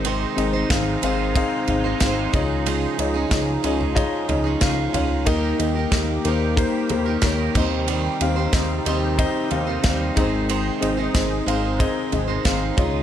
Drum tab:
CC |----------------|----------------|--------------x-|----------------|
RD |x-x-x-x-x-x-x-x-|x-x-x-x-x-x-x-x-|x-x-x-x-x-x-x---|x-x-x-x-x-x-x-x-|
SD |----o-------o---|----o-------o---|----o-------o---|----o-------o---|
FT |----------o---o-|-------o--o---o-|----------o---o-|----------o---o-|
BD |----o---o---o-o-|----o---o---o---|o---o---o---o-o-|----o---o---o-o-|

CC |----------------|
RD |x-x-x-x-x-x-x-x-|
SD |----o-------o---|
FT |----------o---o-|
BD |----o---o---o-o-|